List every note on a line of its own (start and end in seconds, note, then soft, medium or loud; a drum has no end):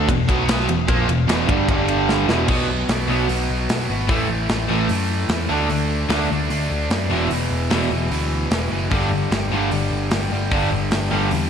0.08 0.27 E1 medium
0.08 0.24 E2 medium
0.08 0.25 B2 medium
0.08 kick loud
0.08 ride loud
0.28 0.66 B1 loud
0.28 0.68 B2 medium
0.28 0.68 F#3 loud
0.28 0.68 B3 loud
0.28 kick loud
0.28 ride medium
0.49 snare loud
0.49 ride loud
0.60 snare soft
0.69 0.87 E1 medium
0.69 0.85 E2 medium
0.69 0.85 B2 medium
0.69 ride medium
0.87 1.07 A#1 medium
0.87 1.07 A#2 medium
0.87 1.08 F3 loud
0.87 1.08 A#3 loud
0.87 kick loud
0.87 ride loud
1.07 1.27 E1 medium
1.07 1.24 E2 medium
1.07 1.24 B2 medium
1.07 ride medium
1.27 1.47 E1 loud
1.27 1.47 E2 medium
1.27 1.47 B2 medium
1.27 1.48 E3 loud
1.27 snare loud
1.27 ride loud
1.47 1.67 G1 medium
1.47 1.67 G2 medium
1.47 1.68 D3 medium
1.47 1.68 G3 loud
1.47 kick loud
1.47 ride medium
1.68 2.25 G1 loud
1.68 2.28 G2 loud
1.68 2.29 D3 loud
1.68 2.29 G3 loud
1.68 kick loud
1.68 ride loud
1.88 ride medium
2.09 snare medium
2.28 2.47 E1 medium
2.28 2.48 E2 medium
2.28 2.47 B2 medium
2.28 2.49 E3 loud
2.28 snare medium
2.48 2.83 B1 medium
2.48 2.88 B2 medium
2.48 2.89 F#3 medium
2.48 2.89 B3 loud
2.48 kick loud
2.48 crash loud
2.89 3.06 B1 medium
2.89 3.07 B2 medium
2.89 3.07 F#3 medium
2.89 3.08 B3 medium
2.89 snare loud
2.89 open hi-hat medium
3.08 3.26 B1 medium
3.08 3.27 B2 medium
3.08 3.28 F#3 medium
3.08 3.28 B3 medium
3.28 3.46 B1 medium
3.28 3.68 B2 medium
3.28 3.69 F#3 loud
3.28 3.70 B3 loud
3.28 open hi-hat medium
3.50 3.67 B1 medium
3.69 3.87 B1 medium
3.69 3.88 B2 medium
3.69 3.90 F#3 medium
3.69 3.90 B3 medium
3.69 snare loud
3.69 open hi-hat medium
3.90 4.07 G#1 medium
3.90 4.08 B2 medium
3.90 4.09 F#3 medium
3.90 4.09 B3 medium
4.09 4.26 A1 medium
4.09 4.49 A2 medium
4.09 4.50 E3 loud
4.09 4.51 A3 medium
4.09 kick loud
4.09 open hi-hat medium
4.29 4.46 A1 medium
4.49 4.66 A1 medium
4.49 4.69 A2 medium
4.49 4.69 E3 medium
4.49 4.70 A3 medium
4.49 snare loud
4.49 open hi-hat soft
4.69 4.87 A1 medium
4.69 4.89 A2 medium
4.69 4.90 E3 medium
4.69 4.91 A3 medium
4.89 5.24 F#2 medium
4.89 5.29 A2 medium
4.89 5.30 E3 medium
4.89 5.30 A3 loud
4.89 open hi-hat medium
5.29 5.46 E2 medium
5.29 5.49 A2 medium
5.29 5.50 E3 medium
5.29 5.49 A3 loud
5.29 snare loud
5.29 open hi-hat medium
5.49 5.67 D2 medium
5.49 5.68 D3 medium
5.49 5.69 A3 loud
5.49 5.69 D4 loud
5.69 6.04 D2 medium
5.69 6.09 D3 medium
5.69 6.10 A3 medium
5.69 6.10 D4 loud
5.69 open hi-hat medium
6.09 6.27 D2 medium
6.09 6.29 D3 medium
6.09 6.30 A3 medium
6.09 6.30 D4 medium
6.09 snare loud
6.09 open hi-hat medium
6.30 6.48 D2 medium
6.30 6.48 D3 medium
6.30 6.49 A3 medium
6.30 6.50 D4 medium
6.50 6.67 D2 medium
6.50 6.89 D3 medium
6.50 6.89 A3 medium
6.50 6.90 D4 loud
6.50 open hi-hat medium
6.70 6.87 D2 medium
6.90 7.12 F#2 medium
6.90 7.09 D3 medium
6.90 7.09 A3 medium
6.90 7.10 D4 loud
6.90 snare loud
6.90 open hi-hat medium
7.10 7.28 E1 medium
7.10 7.29 E2 medium
7.10 7.30 B2 medium
7.10 7.31 E3 loud
7.30 7.48 E1 medium
7.30 7.69 E2 loud
7.30 7.70 B2 loud
7.30 7.70 E3 loud
7.30 open hi-hat medium
7.51 7.68 E1 medium
7.70 7.88 E1 medium
7.70 7.90 E2 medium
7.70 7.90 B2 medium
7.70 7.91 E3 medium
7.70 snare loud
7.70 open hi-hat medium
7.91 8.08 E1 medium
7.91 8.09 E2 medium
7.91 8.09 B2 medium
7.91 8.10 E3 medium
8.10 8.45 D2 medium
8.10 8.49 E2 medium
8.10 8.51 B2 medium
8.10 8.51 E3 loud
8.10 open hi-hat medium
8.51 8.68 E1 medium
8.51 8.70 E2 medium
8.51 8.71 B2 medium
8.51 8.71 E3 medium
8.51 snare loud
8.51 open hi-hat medium
8.71 8.88 F#1 medium
8.71 8.90 E2 medium
8.71 8.91 B2 medium
8.71 8.91 E3 medium
8.91 9.26 G1 medium
8.91 9.30 G2 medium
8.91 9.30 D3 loud
8.91 9.32 G3 loud
8.91 kick loud
8.91 open hi-hat medium
9.31 9.49 G1 medium
9.31 9.50 G2 medium
9.31 9.50 D3 medium
9.31 9.52 G3 medium
9.31 snare loud
9.31 open hi-hat medium
9.51 9.69 G1 medium
9.51 9.70 G2 medium
9.51 9.71 D3 medium
9.51 9.72 G3 medium
9.71 9.89 G1 medium
9.71 10.10 G2 medium
9.71 10.11 D3 medium
9.71 10.11 G3 loud
9.71 open hi-hat medium
9.92 10.09 G1 medium
10.11 10.29 G1 medium
10.11 10.30 G2 medium
10.11 10.31 D3 medium
10.11 10.32 G3 medium
10.11 snare loud
10.11 open hi-hat medium
10.32 10.49 G1 medium
10.32 10.50 G2 medium
10.32 10.51 D3 medium
10.32 10.51 G3 medium
10.51 10.69 G1 medium
10.51 10.91 G2 medium
10.51 10.91 D3 medium
10.51 10.92 G3 loud
10.51 kick loud
10.51 open hi-hat medium
10.72 10.89 G1 loud
10.91 11.09 G1 medium
10.91 11.10 G2 medium
10.91 11.11 D3 medium
10.91 11.11 G3 medium
10.91 snare loud
10.91 open hi-hat medium
11.12 11.30 G1 medium
11.12 11.31 G2 medium
11.12 11.31 D3 medium
11.12 11.32 G3 medium
11.31 11.50 E2 medium
11.31 11.50 G2 medium
11.31 11.50 D3 medium
11.31 11.50 G3 loud
11.31 open hi-hat soft